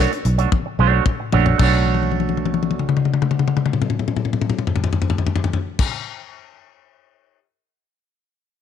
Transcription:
0.00 A3 D4 F#4 C#5
0.12 muted clean electric guitar stroke, closed hi-hat
0.25 B1, muted clean electric guitar stroke, closed hi-hat
0.38 A3 D4 F#4 C#5, closed hi-hat
0.52 kick, high tom
0.66 muted clean electric guitar stroke
0.79 B1 A3 D4 F#4 C#5
0.92 A3 D4 F#4 C#5
1.06 kick, mid tom
1.20 muted clean electric guitar stroke
1.32 A#1 A3 D4 F#4 C#5, floor tom
1.46 A3 D4 F#4 C#5, floor tom
1.58 B1 A3 D4, kick, crash
1.62 F#4 C#5
1.86 high tom
1.94 high tom
2.03 high tom
2.12 high tom
2.20 high tom
2.29 high tom
2.37 high tom
2.45 high tom
2.54 high tom
2.63 high tom
2.71 high tom
2.79 mid tom
2.89 mid tom
2.97 mid tom
3.05 mid tom
3.13 mid tom
3.22 mid tom
3.31 mid tom
3.39 mid tom
3.48 mid tom
3.57 mid tom
3.66 mid tom
3.73 mid tom
3.82 mid tom
3.90 mid tom
3.99 mid tom
4.08 mid tom
4.16 mid tom
4.25 mid tom
4.33 mid tom
4.41 mid tom
4.50 mid tom
4.59 mid tom
4.67 floor tom
4.76 floor tom
4.84 floor tom
4.93 floor tom
5.02 floor tom
5.10 floor tom
5.18 floor tom
5.27 floor tom
5.36 floor tom
5.44 floor tom
5.53 floor tom
5.79 kick, crash

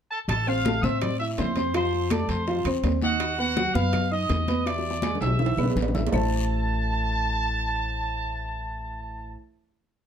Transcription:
0.11 A4 A5
0.28 A1 A4 A5, high bongo, high conga, high timbale, long guiro, claves
0.47 C4 C5 F5 C6, high bongo, high conga
0.65 A3 A4 A5, high bongo, high conga, high timbale, short guiro
0.82 A2 C4 C5 E5 C6 E6, high bongo, high conga, short guiro
1.01 D5 D6, high bongo, high conga, low conga, high timbale, long guiro, claves
1.20 E4 E5 E6, high conga
1.38 F2 C5 C6, high bongo, low bongo, high conga, high timbale, low timbale, short guiro
1.56 C4 C5 C6, high bongo, high conga, high timbale, short guiro
1.74 F3 F4 C5 F5 C6, high bongo, high timbale, long guiro, claves
1.93 high bongo, high conga
2.10 A3 A4 D5 A5 D6, high bongo, high conga, high timbale, short guiro, claves
2.28 F2 C5 C6, high bongo, high conga, high timbale, short guiro
2.47 F3 F4 F5, high bongo, high conga, long guiro
2.64 E2 C4 C5 C6, high conga, high timbale, claves
2.83 D#2, high bongo, low bongo, high conga, high timbale, low timbale, short guiro
3.02 D#4 F#4 D#5 F#5 D#6, high bongo, high conga, short guiro
3.20 high bongo, high timbale, long guiro, claves
3.38 B3 F#4 B4 F#5 B5, high bongo, high conga
3.57 F#3 F#4 F#5, high bongo, high conga, high timbale, short guiro
3.75 F#2 B3 B4 F5 B5, high bongo, high conga, short guiro
3.93 high bongo, high conga, low conga, high timbale, long guiro, claves
4.11 D#4 D#5 D#6, high conga
4.29 E2, high bongo, low bongo, high conga, high timbale, short guiro
4.48 B3 B4 B5, high bongo, high conga, high timbale, short guiro
4.66 E3 E4 D5 E5 D6, high bongo, high conga, high timbale, long guiro, claves
4.79 high bongo
4.84 high conga
4.91 high bongo
5.02 G#3 G#4 G#5, high bongo, high conga, high timbale, short guiro, claves
5.15 low bongo
5.21 B1 E5 E6, high timbale, short guiro
5.27 high bongo
5.39 E3 E4 E5, low bongo, low conga, long guiro
5.46 high timbale
5.57 B1 B3 B4 B5, low conga, low timbale, claves
5.63 low bongo
5.70 low timbale
5.75 A1, low bongo, low conga, short guiro
5.82 low timbale
5.88 low bongo
5.94 E4 E5 E6, low conga, low timbale, short guiro
6.00 low bongo
6.07 low timbale
6.12 A1 A3 E4 A4 C5 E5 A5, low bongo, low conga, low timbale, long guiro, claves

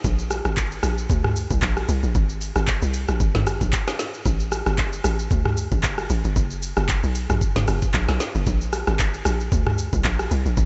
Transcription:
0.04 A#1, kick, shaker
0.19 shaker
0.31 cross-stick, open hi-hat, shaker
0.45 G#1, cross-stick, shaker
0.57 kick, clap, shaker
0.72 shaker
0.83 A#1, cross-stick, open hi-hat, shaker
0.98 shaker
1.10 D2, kick, shaker
1.24 cross-stick, mid tom
1.36 open hi-hat, shaker
1.50 C2, kick, shaker
1.62 A#1, kick, clap, shaker
1.77 cross-stick, shaker
1.89 C2, open hi-hat, shaker
2.03 A#1, shaker
2.15 G#1, kick, shaker
2.30 shaker
2.41 open hi-hat, shaker
2.56 G#1, cross-stick, shaker
2.67 kick, clap, shaker
2.82 C2, shaker
2.94 open hi-hat, shaker
3.08 A#1, cross-stick, shaker
3.20 G#1, kick, shaker
3.35 G#1, snare, mid tom
3.47 cross-stick, open hi-hat, shaker
3.61 A#1, kick, shaker
3.73 kick, clap, shaker
3.88 cross-stick, snare, shaker
3.99 snare, open hi-hat, shaker
4.14 shaker
4.26 A1, kick, shaker
4.40 shaker
4.52 cross-stick, open hi-hat, shaker
4.66 G1, cross-stick, shaker
4.78 kick, clap, shaker
4.93 shaker
5.04 A1, cross-stick, open hi-hat, shaker
5.19 shaker
5.31 D2, kick, shaker
5.45 cross-stick, mid tom
5.57 open hi-hat, shaker
5.72 A1, kick, shaker
5.83 G1, kick, clap, shaker
5.98 cross-stick, shaker
6.10 A1, open hi-hat, shaker
6.24 G1, shaker
6.36 F#1, kick, shaker
6.51 shaker
6.62 open hi-hat, shaker
6.77 F#1, cross-stick, shaker
6.89 kick, clap, shaker
7.03 B1, shaker
7.15 open hi-hat, shaker
7.29 A#1, cross-stick, mid tom, shaker
7.41 kick, shaker
7.56 F#1, snare, mid tom, shaker
7.68 F#1, cross-stick, open hi-hat, shaker
7.82 kick, shaker
7.94 A#1, kick, clap, shaker
8.08 B1, cross-stick, snare, shaker
8.20 snare, open hi-hat, shaker
8.35 F#1, shaker
8.47 A#1, kick, shaker
8.61 shaker
8.73 cross-stick, open hi-hat, shaker
8.87 G#1, cross-stick, shaker
8.99 kick, clap, shaker
9.14 shaker
9.25 A#1, cross-stick, open hi-hat, shaker
9.40 shaker
9.52 D2, kick, shaker
9.67 cross-stick, mid tom
9.78 open hi-hat, shaker
9.93 C2, kick, shaker
10.04 A#1, kick, clap, shaker
10.19 cross-stick, shaker
10.31 C2, open hi-hat, shaker
10.45 A#1, shaker
10.57 G#1, kick, shaker

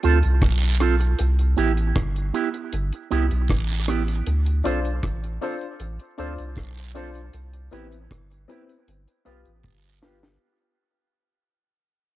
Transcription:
0.03 D2 C4 F4 A4, closed hi-hat, cabasa
0.23 C2, closed hi-hat
0.42 B1, kick, cross-stick, closed hi-hat, long guiro
0.62 closed hi-hat, cabasa
0.80 C4 F4 A4, cross-stick, closed hi-hat, cabasa
1.00 muted clean electric guitar stroke, closed hi-hat
1.19 C2, closed hi-hat, cabasa
1.39 closed hi-hat
1.57 A1 B3 E4 G4, closed hi-hat, cabasa
1.77 closed hi-hat, cabasa
1.96 G1, kick, cross-stick, closed hi-hat
2.16 closed hi-hat, cabasa
2.34 B3 E4 G4, closed hi-hat, cabasa
2.54 closed hi-hat
2.72 G1, closed hi-hat, cabasa
2.92 closed hi-hat
3.11 C2 B3 E4 G4, closed hi-hat, cabasa
3.31 B1, closed hi-hat
3.48 A1, kick, cross-stick, closed hi-hat, long guiro
3.69 closed hi-hat, cabasa
3.88 B3 E4 G4, cross-stick, closed hi-hat, cabasa
4.08 closed hi-hat
4.26 D2, closed hi-hat, cabasa
4.46 closed hi-hat
4.63 B1 C4 D4 F4 A4 C5, closed hi-hat, cabasa
4.85 closed hi-hat, cabasa
5.03 A1, kick, cross-stick, closed hi-hat
5.23 closed hi-hat, cabasa
5.41 C4 D4 F4 A4 C5, open hi-hat, cabasa
5.61 closed hi-hat
5.80 A1, closed hi-hat, cabasa
5.99 closed hi-hat
6.18 D2 C4 D4 F4 A4 C5, closed hi-hat, cabasa
6.38 C2, closed hi-hat
6.56 B1, kick, cross-stick, closed hi-hat, long guiro
6.77 closed hi-hat, cabasa
6.94 C4 D4 F4 A4 C5, closed hi-hat, cabasa
7.15 closed hi-hat
7.34 C2, closed hi-hat, cabasa
7.53 closed hi-hat
7.71 A1 B3 C4 E4 G4 B4, closed hi-hat, cabasa
7.92 closed hi-hat, cabasa
8.11 G1, kick, cross-stick, closed hi-hat
8.30 closed hi-hat, cabasa
8.48 B3 C4 E4 G4 B4, closed hi-hat, cabasa
8.69 closed hi-hat
8.88 G1, closed hi-hat, cabasa
9.08 closed hi-hat
9.25 B1 B3 F4 G4 B4, closed hi-hat, cabasa
9.46 A1, closed hi-hat
9.63 G1, kick, long guiro
9.84 cabasa
10.02 B3 F4 G4 B4, snare, cabasa
10.23 muted clean electric guitar stroke, snare

